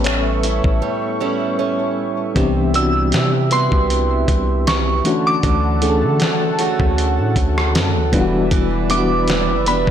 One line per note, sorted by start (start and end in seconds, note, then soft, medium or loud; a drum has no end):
0.00 0.61 A1 medium
0.00 2.36 A2 medium
0.00 0.78 G3 medium
0.00 0.81 G3 medium
0.00 2.38 A3 medium
0.00 2.35 B3 medium
0.00 0.06 C#4 medium
0.00 2.33 A4 medium
0.00 2.38 A4 medium
0.00 2.38 B4 medium
0.00 2.32 E5 medium
0.00 2.33 C#6 medium
0.04 1.20 C#4 medium
0.04 0.79 C#4 medium
0.04 0.78 C#5 medium
0.04 finger snap loud
0.04 closed hi-hat medium
0.43 1.21 E4 medium
0.43 closed hi-hat medium
0.64 0.82 A1 loud
0.64 kick medium
0.82 1.20 G3 medium
1.20 2.74 G3 medium
1.20 1.58 C#4 medium
1.20 3.52 E4 medium
1.59 2.44 C#4 medium
2.35 3.15 C2 loud
2.35 5.05 C3 medium
2.35 2.68 E3 medium
2.35 2.68 B3 medium
2.35 2.69 C4 medium
2.35 2.69 D4 medium
2.35 2.69 G4 medium
2.35 5.02 E5 medium
2.35 kick loud
2.35 closed hi-hat medium
2.73 4.04 E3 medium
2.73 3.50 G3 medium
2.73 4.04 B3 medium
2.73 4.04 C4 medium
2.73 4.05 D4 medium
2.73 4.05 F#4 medium
2.73 3.54 E6 loud
2.73 closed hi-hat medium
3.12 3.69 C3 loud
3.12 snare loud
3.12 closed hi-hat medium
3.51 5.13 G3 medium
3.51 5.14 B3 medium
3.51 5.14 E4 medium
3.51 4.71 C6 medium
3.51 closed hi-hat medium
3.72 4.26 C2 loud
3.72 kick medium
3.90 closed hi-hat medium
4.28 5.02 C2 loud
4.28 kick medium
4.28 closed hi-hat medium
4.67 5.28 C#6 medium
4.67 snare loud
4.67 closed hi-hat medium
5.04 5.43 D3 medium
5.04 5.70 E3 medium
5.04 5.70 A3 medium
5.04 5.71 C#4 medium
5.04 5.71 D4 medium
5.04 5.71 F#4 medium
5.04 8.10 A4 medium
5.04 8.10 F#5 medium
5.04 8.10 A5 medium
5.04 closed hi-hat medium
5.27 6.38 D6 medium
5.43 6.05 D2 loud
5.43 8.54 D3 medium
5.43 kick loud
5.43 closed hi-hat medium
5.81 7.11 E3 medium
5.81 7.12 A3 medium
5.81 6.58 A3 medium
5.81 7.12 C#4 medium
5.81 7.12 D4 medium
5.81 5.90 G#4 medium
5.81 closed hi-hat medium
5.90 7.16 A4 medium
6.03 6.20 D3 medium
6.20 snare loud
6.20 closed hi-hat medium
6.59 8.21 A3 medium
6.59 8.21 C#4 medium
6.59 8.22 F#4 medium
6.59 closed hi-hat medium
6.80 7.20 D2 loud
6.80 kick medium
6.98 closed hi-hat medium
7.19 7.35 A2 medium
7.36 7.76 D2 loud
7.36 kick medium
7.36 closed hi-hat medium
7.58 cross-stick medium
7.75 7.97 F#2 loud
7.75 snare loud
7.75 closed hi-hat medium
7.96 8.12 D2 medium
8.12 8.50 E1 loud
8.12 8.78 E3 medium
8.12 8.50 E3 medium
8.12 8.78 G3 medium
8.12 8.78 B3 medium
8.12 8.79 D4 medium
8.12 8.21 F4 medium
8.12 9.91 B4 medium
8.12 9.91 D5 medium
8.12 9.91 E5 medium
8.12 kick medium
8.12 closed hi-hat medium
8.21 8.82 F#4 loud
8.51 9.51 E1 loud
8.51 9.91 E3 medium
8.51 kick loud
8.51 closed hi-hat medium
8.89 9.91 E3 medium
8.89 9.91 G3 medium
8.89 9.65 B3 medium
8.89 9.91 B3 medium
8.89 9.91 D4 medium
8.89 8.98 E4 medium
8.89 9.69 D6 medium
8.89 closed hi-hat medium
8.98 9.91 F#4 medium
9.28 snare loud
9.28 closed hi-hat medium
9.49 9.68 F#1 medium
9.66 9.87 E1 loud
9.66 9.91 B3 medium
9.66 9.91 D4 medium
9.66 9.91 G4 medium
9.66 9.91 B5 medium
9.66 closed hi-hat medium
9.87 9.91 E1 loud
9.87 kick loud